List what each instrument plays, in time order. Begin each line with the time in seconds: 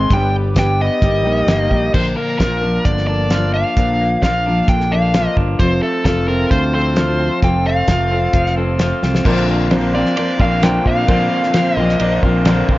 Already playing: clean electric guitar G#2 G#3 C4 D#4, steel-string acoustic guitar G#3 C4 D#4 G#4, harmonium G#4, lead electric guitar C6
0.09 fingered electric bass G1, steel-string acoustic guitar G2 D3 G3 B3 D4 G4, clean electric guitar G2, harmonium B3 G4 D5, kick, closed hi-hat
0.13 lead electric guitar G5
0.54 steel-string acoustic guitar G3 B3 D4 G4, clean electric guitar G3, kick, snare, closed hi-hat
0.59 lead electric guitar G5
0.80 clean electric guitar B3, lead electric guitar D#5
1.01 fingered electric bass G1, steel-string acoustic guitar G3 A#3 D#4 G4, clean electric guitar G3, harmonium A#3 G4 D#5, kick, closed hi-hat
1.24 fingered electric bass A#1, steel-string acoustic guitar G3 A#3 D#4 G4, clean electric guitar D#4
1.46 fingered electric bass G1, steel-string acoustic guitar G3 A#3 D#4 G4, clean electric guitar A#3, snare, closed hi-hat
1.69 fingered electric bass A#1, clean electric guitar G3, steel-string acoustic guitar G3 A#3 D#4 G4, kick
1.93 fingered electric bass A#1, steel-string acoustic guitar A#2 D3 F3 A#3 D4 A#4, clean electric guitar A#2, lead electric guitar C5, kick, crash
2.17 clean electric guitar A#3, lead electric guitar A#4
2.38 fingered electric bass A#1, steel-string acoustic guitar F3 A#3 D4 A#4, clean electric guitar F4, lead electric guitar A#4, kick, snare, closed hi-hat
2.61 steel-string acoustic guitar F3 A#3 D4 A#4, clean electric guitar D4
2.85 fingered electric bass G1, clean electric guitar D3, lead electric guitar D5, kick, closed hi-hat
2.98 snare
3.07 steel-string acoustic guitar F3 A#3 D4 A#4, clean electric guitar D4, lead electric guitar D5
3.30 steel-string acoustic guitar F3 A#3 D4 A#4, clean electric guitar F4, snare, closed hi-hat
3.54 clean electric guitar D4, lead electric guitar F5
3.76 fingered electric bass A#1, steel-string acoustic guitar A#2 D3 F3 A#3 D4 A#4, clean electric guitar A#2, kick, closed hi-hat
4.01 clean electric guitar A#3
4.22 fingered electric bass A#1, steel-string acoustic guitar F3 A#3 D4 A#4, clean electric guitar F4, lead electric guitar F5, kick, snare, closed hi-hat
4.46 steel-string acoustic guitar F3 A#3 D4 A#4, clean electric guitar D4
4.68 fingered electric bass A#1, clean electric guitar D3, lead electric guitar G5, kick, closed hi-hat
4.80 snare
4.90 steel-string acoustic guitar F3 A#3 D4 A#4, clean electric guitar D4, lead electric guitar F5
5.14 steel-string acoustic guitar F3 A#3 D4 A#4, clean electric guitar F4, snare, closed hi-hat
5.37 fingered electric bass G1, clean electric guitar D4, kick
5.59 fingered electric bass F1, clean electric guitar F2, steel-string acoustic guitar F3 C4 F4 A4, harmonium A3 F4 C5, lead electric guitar C5, kick, closed hi-hat
5.82 clean electric guitar A3, lead electric guitar A4
6.05 fingered electric bass F1, steel-string acoustic guitar F3 C4 F4 A4, clean electric guitar F4, lead electric guitar A4, kick, snare, closed hi-hat
6.27 clean electric guitar C4, steel-string acoustic guitar C4 F4 A4, lead electric guitar A#4
6.50 fingered electric bass D2, clean electric guitar F3, lead electric guitar C5, kick, closed hi-hat
6.73 clean electric guitar C4, steel-string acoustic guitar C4 F4 A4, lead electric guitar C5
6.95 steel-string acoustic guitar F3 C4 F4 A4, clean electric guitar F4, snare, closed hi-hat
7.20 clean electric guitar C4
7.42 fingered electric bass F1, clean electric guitar F2, steel-string acoustic guitar F3 C4 F4 A4, lead electric guitar G5, kick, closed hi-hat
7.66 clean electric guitar A3, lead electric guitar F5
7.87 fingered electric bass F1, steel-string acoustic guitar F3 C4 F4 A4, clean electric guitar F4, kick, snare, closed hi-hat
8.11 clean electric guitar C4, steel-string acoustic guitar C4 F4 A4
8.33 fingered electric bass F1, clean electric guitar F3, kick, closed hi-hat
8.46 snare
8.56 clean electric guitar C4, steel-string acoustic guitar C4 F4 A4
8.78 steel-string acoustic guitar F3 C4 F4 A4, clean electric guitar F4, snare, closed hi-hat
9.03 fingered electric bass C2, clean electric guitar C4, snare
9.15 snare
9.24 fingered electric bass A#1, steel-string acoustic guitar A#2 D3 F3 C4 D4 A#4, clean electric guitar A#2 D3 A#3 C4, harmonium A#3 D4 C5, grand piano D4 F4 A#4 C5, kick, crash
9.28 clean electric guitar F4
9.48 clean electric guitar A#3 C4 F4
9.70 steel-string acoustic guitar A#2 D3 F3 C4 D4 A#4, grand piano D4 F4 A#4 C5, snare, ride bell
9.94 steel-string acoustic guitar F3 C4 D4 A#4, clean electric guitar A#3 C4 F4, lead electric guitar D5
10.06 snare
10.16 steel-string acoustic guitar F3 C4 D4 A#4, grand piano D4 F4 A#4 C5, lead electric guitar D5, ride bell
10.38 fingered electric bass A#1, steel-string acoustic guitar F3 C4 D4 A#4, clean electric guitar A#3 C4 F4, lead electric guitar F5, kick
10.61 steel-string acoustic guitar A#2 D3 F3 C4 D4 A#4, clean electric guitar A#2 D3 A#3 C4, grand piano D4 F4 A#4 C5, lead electric guitar G5, snare, ride bell
10.65 clean electric guitar F4
10.85 fingered electric bass A#2, clean electric guitar A#3 C4 F4, lead electric guitar F5, kick
11.07 steel-string acoustic guitar A#2 D3 F3 C4 D4 A#4, fingered electric bass A#2, clean electric guitar A#2 D3 A#3 C4, grand piano D4 F4 A#4 C5, kick, ride bell
11.11 clean electric guitar F4
11.32 clean electric guitar A#3 C4 F4
11.43 snare
11.53 steel-string acoustic guitar A#2 D3 F3 C4 D4 A#4, grand piano D4 F4 A#4 C5, snare, ride bell
11.76 fingered electric bass A#1, steel-string acoustic guitar F3 C4 D4 A#4, clean electric guitar A#3 C4 F4, lead electric guitar D#5, grand piano C6
11.89 snare
11.99 fingered electric bass A#1, steel-string acoustic guitar F3 C4 D4 A#4, grand piano D4 F4 A#4 D5 A#5, ride bell
12.22 fingered electric bass A#1, steel-string acoustic guitar F3 C4 D4 A#4, clean electric guitar C4 F4, grand piano F5, kick
12.27 clean electric guitar A#3
12.45 steel-string acoustic guitar A#2 D3 F3 C4 D4 A#4, clean electric guitar A#2 D3 A#3 C4, grand piano D4 F4 A#4 D5 G5, snare, ride bell
12.49 clean electric guitar F4
12.68 fingered electric bass A#1, clean electric guitar A#3 C4 F4, grand piano F5, kick